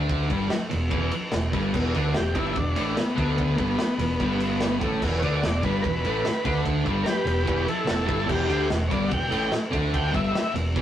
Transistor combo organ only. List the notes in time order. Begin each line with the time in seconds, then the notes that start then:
2.17 G4
2.35 D#4
2.39 E4
2.57 D4
2.98 B3
3.56 A#3 B3
5.19 C#5
5.24 D5
5.45 D5
5.65 B4
5.82 A#4 B4
7.04 G4 A#4
7.10 B4
7.26 G4 B4
7.48 G4 B4
7.69 E4 A4
7.88 E4 A4
8.08 E4 A4
8.29 G4
8.88 C#5
8.92 D5
9.09 F#5
9.14 G5
9.94 G5
10.16 E5